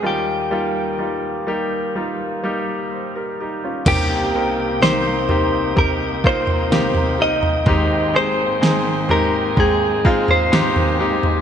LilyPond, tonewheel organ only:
<<
  \new Staff \with { instrumentName = "Tonewheel organ" } { \time 4/4 \key c \phrygian \tempo 4 = 63 r1 | g''1~ | g''2 aes2 | }
  \new Staff \with { instrumentName = "Tonewheel organ" } { \clef bass \time 4/4 \key c \phrygian << { r1 | <c, c ees'>1 | <aes, ees c'>1 | } \\ { r1 | bes1~ | bes1 | } >> }
>>